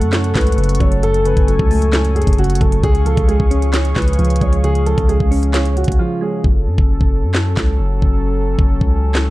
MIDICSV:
0, 0, Header, 1, 6, 480
1, 0, Start_track
1, 0, Key_signature, 3, "minor"
1, 0, Tempo, 451128
1, 1096, Time_signature, 4, 2, 24, 8
1, 9896, End_track
2, 0, Start_track
2, 0, Title_t, "Analog synth pad"
2, 0, Program_c, 0, 89
2, 0, Note_on_c, 0, 69, 86
2, 0, Note_on_c, 0, 78, 79
2, 0, Note_on_c, 0, 85, 95
2, 1077, Note_off_c, 0, 78, 0
2, 1097, Note_on_c, 0, 80, 78
2, 2973, Note_off_c, 0, 85, 0
2, 2978, Note_off_c, 0, 69, 0
2, 2997, Note_off_c, 0, 80, 0
2, 3017, Note_on_c, 0, 68, 84
2, 3017, Note_on_c, 0, 77, 78
2, 3017, Note_on_c, 0, 85, 97
2, 6818, Note_off_c, 0, 68, 0
2, 6818, Note_off_c, 0, 77, 0
2, 6818, Note_off_c, 0, 85, 0
2, 6857, Note_on_c, 0, 54, 85
2, 6857, Note_on_c, 0, 61, 75
2, 6857, Note_on_c, 0, 69, 93
2, 9896, Note_off_c, 0, 54, 0
2, 9896, Note_off_c, 0, 61, 0
2, 9896, Note_off_c, 0, 69, 0
2, 9896, End_track
3, 0, Start_track
3, 0, Title_t, "Grand piano"
3, 0, Program_c, 1, 0
3, 0, Note_on_c, 1, 69, 84
3, 332, Note_off_c, 1, 69, 0
3, 375, Note_on_c, 1, 71, 80
3, 827, Note_off_c, 1, 71, 0
3, 855, Note_on_c, 1, 73, 75
3, 1069, Note_off_c, 1, 73, 0
3, 1097, Note_on_c, 1, 69, 107
3, 1310, Note_off_c, 1, 69, 0
3, 1337, Note_on_c, 1, 71, 91
3, 1550, Note_off_c, 1, 71, 0
3, 1576, Note_on_c, 1, 69, 74
3, 2254, Note_off_c, 1, 69, 0
3, 2295, Note_on_c, 1, 68, 83
3, 2509, Note_off_c, 1, 68, 0
3, 2540, Note_on_c, 1, 66, 93
3, 2752, Note_off_c, 1, 66, 0
3, 2780, Note_on_c, 1, 69, 79
3, 2991, Note_off_c, 1, 69, 0
3, 3018, Note_on_c, 1, 68, 113
3, 3230, Note_off_c, 1, 68, 0
3, 3258, Note_on_c, 1, 69, 98
3, 3471, Note_off_c, 1, 69, 0
3, 3498, Note_on_c, 1, 68, 82
3, 4175, Note_off_c, 1, 68, 0
3, 4214, Note_on_c, 1, 71, 80
3, 4666, Note_off_c, 1, 71, 0
3, 4698, Note_on_c, 1, 73, 76
3, 4910, Note_off_c, 1, 73, 0
3, 4939, Note_on_c, 1, 68, 100
3, 5151, Note_off_c, 1, 68, 0
3, 5173, Note_on_c, 1, 69, 94
3, 5387, Note_off_c, 1, 69, 0
3, 5417, Note_on_c, 1, 68, 81
3, 6094, Note_off_c, 1, 68, 0
3, 6137, Note_on_c, 1, 66, 77
3, 6350, Note_off_c, 1, 66, 0
3, 6374, Note_on_c, 1, 65, 87
3, 6588, Note_off_c, 1, 65, 0
3, 6619, Note_on_c, 1, 68, 75
3, 6831, Note_off_c, 1, 68, 0
3, 9896, End_track
4, 0, Start_track
4, 0, Title_t, "Synth keys"
4, 0, Program_c, 2, 88
4, 0, Control_c, 2, 64, 127
4, 0, Note_on_c, 2, 42, 87
4, 0, Note_on_c, 2, 49, 79
4, 0, Note_on_c, 2, 54, 81
4, 0, Note_on_c, 2, 57, 103
4, 137, Note_on_c, 2, 61, 83
4, 363, Note_off_c, 2, 42, 0
4, 376, Note_on_c, 2, 42, 74
4, 600, Note_off_c, 2, 49, 0
4, 613, Note_on_c, 2, 49, 92
4, 837, Note_off_c, 2, 54, 0
4, 850, Note_on_c, 2, 54, 82
4, 1089, Note_off_c, 2, 42, 0
4, 1093, Note_off_c, 2, 57, 0
4, 1102, Note_on_c, 2, 42, 88
4, 1320, Note_off_c, 2, 49, 0
4, 1333, Note_on_c, 2, 49, 79
4, 1336, Note_off_c, 2, 61, 0
4, 1560, Note_off_c, 2, 54, 0
4, 1573, Note_on_c, 2, 54, 79
4, 1818, Note_on_c, 2, 57, 96
4, 2058, Note_on_c, 2, 61, 88
4, 2271, Note_off_c, 2, 42, 0
4, 2284, Note_on_c, 2, 42, 84
4, 2524, Note_off_c, 2, 49, 0
4, 2537, Note_on_c, 2, 49, 92
4, 2763, Note_off_c, 2, 54, 0
4, 2776, Note_on_c, 2, 54, 78
4, 3001, Note_off_c, 2, 49, 0
4, 3010, Note_off_c, 2, 42, 0
4, 3014, Note_on_c, 2, 49, 89
4, 3016, Note_off_c, 2, 54, 0
4, 3017, Note_off_c, 2, 57, 0
4, 3017, Note_off_c, 2, 61, 0
4, 3032, Control_c, 2, 64, 0
4, 3223, Control_c, 2, 64, 127
4, 3251, Note_on_c, 2, 53, 80
4, 3494, Note_on_c, 2, 56, 79
4, 3731, Note_on_c, 2, 61, 93
4, 3979, Note_on_c, 2, 73, 77
4, 4208, Note_off_c, 2, 49, 0
4, 4221, Note_on_c, 2, 49, 79
4, 4445, Note_off_c, 2, 53, 0
4, 4458, Note_on_c, 2, 53, 97
4, 4680, Note_off_c, 2, 56, 0
4, 4693, Note_on_c, 2, 56, 77
4, 4920, Note_off_c, 2, 49, 0
4, 4933, Note_on_c, 2, 49, 88
4, 4934, Note_off_c, 2, 61, 0
4, 5162, Note_off_c, 2, 53, 0
4, 5175, Note_on_c, 2, 53, 81
4, 5178, Note_off_c, 2, 73, 0
4, 5400, Note_off_c, 2, 56, 0
4, 5412, Note_on_c, 2, 56, 78
4, 5653, Note_on_c, 2, 61, 102
4, 5897, Note_on_c, 2, 73, 84
4, 6120, Note_off_c, 2, 49, 0
4, 6133, Note_on_c, 2, 49, 74
4, 6363, Note_off_c, 2, 53, 0
4, 6376, Note_on_c, 2, 53, 90
4, 6596, Note_off_c, 2, 56, 0
4, 6609, Note_on_c, 2, 56, 75
4, 6852, Note_off_c, 2, 56, 0
4, 6854, Note_off_c, 2, 49, 0
4, 6854, Note_off_c, 2, 61, 0
4, 6856, Note_off_c, 2, 53, 0
4, 6857, Note_off_c, 2, 73, 0
4, 6869, Control_c, 2, 64, 0
4, 9896, End_track
5, 0, Start_track
5, 0, Title_t, "808-style bass"
5, 0, Program_c, 3, 38
5, 16, Note_on_c, 3, 42, 97
5, 358, Note_off_c, 3, 42, 0
5, 377, Note_on_c, 3, 37, 104
5, 607, Note_off_c, 3, 37, 0
5, 616, Note_on_c, 3, 30, 114
5, 846, Note_off_c, 3, 30, 0
5, 855, Note_on_c, 3, 30, 105
5, 1432, Note_off_c, 3, 30, 0
5, 1456, Note_on_c, 3, 30, 99
5, 1686, Note_off_c, 3, 30, 0
5, 1696, Note_on_c, 3, 37, 104
5, 2387, Note_off_c, 3, 37, 0
5, 2417, Note_on_c, 3, 30, 98
5, 2762, Note_off_c, 3, 30, 0
5, 2776, Note_on_c, 3, 30, 101
5, 3006, Note_off_c, 3, 30, 0
5, 3016, Note_on_c, 3, 37, 112
5, 3362, Note_off_c, 3, 37, 0
5, 3376, Note_on_c, 3, 37, 99
5, 3606, Note_off_c, 3, 37, 0
5, 3615, Note_on_c, 3, 37, 105
5, 4192, Note_off_c, 3, 37, 0
5, 4216, Note_on_c, 3, 37, 104
5, 4447, Note_off_c, 3, 37, 0
5, 4456, Note_on_c, 3, 37, 109
5, 4686, Note_off_c, 3, 37, 0
5, 4696, Note_on_c, 3, 37, 107
5, 5272, Note_off_c, 3, 37, 0
5, 5296, Note_on_c, 3, 37, 102
5, 5526, Note_off_c, 3, 37, 0
5, 5535, Note_on_c, 3, 37, 100
5, 6227, Note_off_c, 3, 37, 0
5, 6256, Note_on_c, 3, 37, 101
5, 6371, Note_off_c, 3, 37, 0
5, 6856, Note_on_c, 3, 30, 111
5, 7095, Note_on_c, 3, 42, 100
5, 7111, Note_off_c, 3, 30, 0
5, 7210, Note_off_c, 3, 42, 0
5, 7216, Note_on_c, 3, 30, 102
5, 7446, Note_off_c, 3, 30, 0
5, 7456, Note_on_c, 3, 30, 108
5, 7695, Note_on_c, 3, 42, 95
5, 7711, Note_off_c, 3, 30, 0
5, 8038, Note_off_c, 3, 42, 0
5, 8056, Note_on_c, 3, 37, 107
5, 8287, Note_off_c, 3, 37, 0
5, 8295, Note_on_c, 3, 30, 108
5, 8526, Note_off_c, 3, 30, 0
5, 8536, Note_on_c, 3, 30, 105
5, 9112, Note_off_c, 3, 30, 0
5, 9136, Note_on_c, 3, 30, 103
5, 9366, Note_off_c, 3, 30, 0
5, 9375, Note_on_c, 3, 37, 102
5, 9896, Note_off_c, 3, 37, 0
5, 9896, End_track
6, 0, Start_track
6, 0, Title_t, "Drums"
6, 15, Note_on_c, 9, 42, 59
6, 122, Note_off_c, 9, 42, 0
6, 134, Note_on_c, 9, 39, 91
6, 135, Note_on_c, 9, 38, 109
6, 136, Note_on_c, 9, 42, 78
6, 240, Note_off_c, 9, 39, 0
6, 242, Note_off_c, 9, 38, 0
6, 242, Note_off_c, 9, 42, 0
6, 256, Note_on_c, 9, 42, 56
6, 363, Note_off_c, 9, 42, 0
6, 376, Note_on_c, 9, 36, 93
6, 376, Note_on_c, 9, 39, 79
6, 377, Note_on_c, 9, 42, 48
6, 378, Note_on_c, 9, 38, 97
6, 437, Note_off_c, 9, 42, 0
6, 437, Note_on_c, 9, 42, 60
6, 483, Note_off_c, 9, 36, 0
6, 483, Note_off_c, 9, 39, 0
6, 484, Note_off_c, 9, 38, 0
6, 497, Note_off_c, 9, 42, 0
6, 497, Note_on_c, 9, 42, 70
6, 557, Note_off_c, 9, 42, 0
6, 557, Note_on_c, 9, 42, 83
6, 617, Note_off_c, 9, 42, 0
6, 617, Note_on_c, 9, 42, 52
6, 676, Note_off_c, 9, 42, 0
6, 676, Note_on_c, 9, 42, 63
6, 735, Note_off_c, 9, 42, 0
6, 735, Note_on_c, 9, 42, 76
6, 796, Note_off_c, 9, 42, 0
6, 796, Note_on_c, 9, 42, 85
6, 855, Note_on_c, 9, 36, 97
6, 856, Note_off_c, 9, 42, 0
6, 856, Note_on_c, 9, 42, 51
6, 962, Note_off_c, 9, 36, 0
6, 962, Note_off_c, 9, 42, 0
6, 976, Note_on_c, 9, 42, 83
6, 1082, Note_off_c, 9, 42, 0
6, 1097, Note_on_c, 9, 42, 76
6, 1203, Note_off_c, 9, 42, 0
6, 1216, Note_on_c, 9, 42, 53
6, 1323, Note_off_c, 9, 42, 0
6, 1335, Note_on_c, 9, 42, 67
6, 1441, Note_off_c, 9, 42, 0
6, 1456, Note_on_c, 9, 36, 104
6, 1456, Note_on_c, 9, 42, 59
6, 1562, Note_off_c, 9, 36, 0
6, 1562, Note_off_c, 9, 42, 0
6, 1577, Note_on_c, 9, 42, 76
6, 1683, Note_off_c, 9, 42, 0
6, 1696, Note_on_c, 9, 36, 89
6, 1802, Note_off_c, 9, 36, 0
6, 1818, Note_on_c, 9, 46, 87
6, 1924, Note_off_c, 9, 46, 0
6, 1936, Note_on_c, 9, 42, 60
6, 2042, Note_off_c, 9, 42, 0
6, 2054, Note_on_c, 9, 39, 88
6, 2056, Note_on_c, 9, 38, 111
6, 2056, Note_on_c, 9, 42, 78
6, 2161, Note_off_c, 9, 39, 0
6, 2162, Note_off_c, 9, 38, 0
6, 2162, Note_off_c, 9, 42, 0
6, 2177, Note_on_c, 9, 42, 56
6, 2283, Note_off_c, 9, 42, 0
6, 2298, Note_on_c, 9, 42, 49
6, 2358, Note_off_c, 9, 42, 0
6, 2358, Note_on_c, 9, 42, 60
6, 2417, Note_on_c, 9, 36, 98
6, 2418, Note_off_c, 9, 42, 0
6, 2418, Note_on_c, 9, 42, 70
6, 2477, Note_off_c, 9, 42, 0
6, 2477, Note_on_c, 9, 42, 80
6, 2523, Note_off_c, 9, 36, 0
6, 2537, Note_off_c, 9, 42, 0
6, 2537, Note_on_c, 9, 42, 52
6, 2597, Note_off_c, 9, 42, 0
6, 2597, Note_on_c, 9, 42, 61
6, 2657, Note_off_c, 9, 42, 0
6, 2657, Note_on_c, 9, 42, 76
6, 2716, Note_off_c, 9, 42, 0
6, 2716, Note_on_c, 9, 42, 89
6, 2776, Note_on_c, 9, 36, 97
6, 2777, Note_off_c, 9, 42, 0
6, 2777, Note_on_c, 9, 42, 49
6, 2882, Note_off_c, 9, 36, 0
6, 2883, Note_off_c, 9, 42, 0
6, 2897, Note_on_c, 9, 42, 88
6, 3004, Note_off_c, 9, 42, 0
6, 3016, Note_on_c, 9, 36, 119
6, 3017, Note_on_c, 9, 42, 79
6, 3123, Note_off_c, 9, 36, 0
6, 3123, Note_off_c, 9, 42, 0
6, 3136, Note_on_c, 9, 42, 52
6, 3243, Note_off_c, 9, 42, 0
6, 3256, Note_on_c, 9, 42, 65
6, 3362, Note_off_c, 9, 42, 0
6, 3376, Note_on_c, 9, 36, 105
6, 3376, Note_on_c, 9, 42, 60
6, 3482, Note_off_c, 9, 36, 0
6, 3482, Note_off_c, 9, 42, 0
6, 3497, Note_on_c, 9, 42, 76
6, 3603, Note_off_c, 9, 42, 0
6, 3616, Note_on_c, 9, 36, 92
6, 3722, Note_off_c, 9, 36, 0
6, 3737, Note_on_c, 9, 42, 91
6, 3843, Note_off_c, 9, 42, 0
6, 3855, Note_on_c, 9, 42, 59
6, 3961, Note_off_c, 9, 42, 0
6, 3973, Note_on_c, 9, 39, 90
6, 3975, Note_on_c, 9, 38, 109
6, 3975, Note_on_c, 9, 42, 80
6, 4080, Note_off_c, 9, 39, 0
6, 4081, Note_off_c, 9, 38, 0
6, 4082, Note_off_c, 9, 42, 0
6, 4095, Note_on_c, 9, 42, 55
6, 4201, Note_off_c, 9, 42, 0
6, 4215, Note_on_c, 9, 39, 78
6, 4216, Note_on_c, 9, 36, 91
6, 4216, Note_on_c, 9, 42, 48
6, 4217, Note_on_c, 9, 38, 99
6, 4277, Note_off_c, 9, 42, 0
6, 4277, Note_on_c, 9, 42, 61
6, 4321, Note_off_c, 9, 39, 0
6, 4323, Note_off_c, 9, 36, 0
6, 4323, Note_off_c, 9, 38, 0
6, 4337, Note_off_c, 9, 42, 0
6, 4337, Note_on_c, 9, 42, 72
6, 4397, Note_off_c, 9, 42, 0
6, 4397, Note_on_c, 9, 42, 81
6, 4456, Note_off_c, 9, 42, 0
6, 4456, Note_on_c, 9, 42, 50
6, 4517, Note_off_c, 9, 42, 0
6, 4517, Note_on_c, 9, 42, 62
6, 4577, Note_off_c, 9, 42, 0
6, 4577, Note_on_c, 9, 42, 74
6, 4637, Note_off_c, 9, 42, 0
6, 4637, Note_on_c, 9, 42, 84
6, 4696, Note_on_c, 9, 36, 97
6, 4697, Note_off_c, 9, 42, 0
6, 4697, Note_on_c, 9, 42, 50
6, 4802, Note_off_c, 9, 36, 0
6, 4803, Note_off_c, 9, 42, 0
6, 4816, Note_on_c, 9, 42, 87
6, 4923, Note_off_c, 9, 42, 0
6, 4937, Note_on_c, 9, 42, 77
6, 5043, Note_off_c, 9, 42, 0
6, 5056, Note_on_c, 9, 42, 52
6, 5163, Note_off_c, 9, 42, 0
6, 5176, Note_on_c, 9, 42, 67
6, 5282, Note_off_c, 9, 42, 0
6, 5296, Note_on_c, 9, 36, 100
6, 5296, Note_on_c, 9, 42, 60
6, 5402, Note_off_c, 9, 36, 0
6, 5403, Note_off_c, 9, 42, 0
6, 5417, Note_on_c, 9, 42, 73
6, 5524, Note_off_c, 9, 42, 0
6, 5536, Note_on_c, 9, 36, 88
6, 5642, Note_off_c, 9, 36, 0
6, 5658, Note_on_c, 9, 46, 91
6, 5764, Note_off_c, 9, 46, 0
6, 5776, Note_on_c, 9, 42, 61
6, 5882, Note_off_c, 9, 42, 0
6, 5894, Note_on_c, 9, 39, 88
6, 5895, Note_on_c, 9, 38, 112
6, 5896, Note_on_c, 9, 42, 78
6, 6000, Note_off_c, 9, 39, 0
6, 6002, Note_off_c, 9, 38, 0
6, 6002, Note_off_c, 9, 42, 0
6, 6016, Note_on_c, 9, 42, 54
6, 6122, Note_off_c, 9, 42, 0
6, 6137, Note_on_c, 9, 42, 48
6, 6216, Note_off_c, 9, 42, 0
6, 6216, Note_on_c, 9, 42, 63
6, 6256, Note_on_c, 9, 36, 95
6, 6296, Note_off_c, 9, 42, 0
6, 6296, Note_on_c, 9, 42, 80
6, 6363, Note_off_c, 9, 36, 0
6, 6403, Note_off_c, 9, 42, 0
6, 6856, Note_on_c, 9, 36, 113
6, 6962, Note_off_c, 9, 36, 0
6, 7216, Note_on_c, 9, 36, 102
6, 7322, Note_off_c, 9, 36, 0
6, 7456, Note_on_c, 9, 36, 89
6, 7562, Note_off_c, 9, 36, 0
6, 7814, Note_on_c, 9, 39, 86
6, 7816, Note_on_c, 9, 38, 110
6, 7921, Note_off_c, 9, 39, 0
6, 7922, Note_off_c, 9, 38, 0
6, 8055, Note_on_c, 9, 39, 78
6, 8056, Note_on_c, 9, 36, 90
6, 8056, Note_on_c, 9, 38, 97
6, 8161, Note_off_c, 9, 39, 0
6, 8163, Note_off_c, 9, 36, 0
6, 8163, Note_off_c, 9, 38, 0
6, 8536, Note_on_c, 9, 36, 93
6, 8642, Note_off_c, 9, 36, 0
6, 9136, Note_on_c, 9, 36, 100
6, 9242, Note_off_c, 9, 36, 0
6, 9376, Note_on_c, 9, 36, 89
6, 9482, Note_off_c, 9, 36, 0
6, 9734, Note_on_c, 9, 39, 87
6, 9735, Note_on_c, 9, 38, 109
6, 9840, Note_off_c, 9, 39, 0
6, 9842, Note_off_c, 9, 38, 0
6, 9896, End_track
0, 0, End_of_file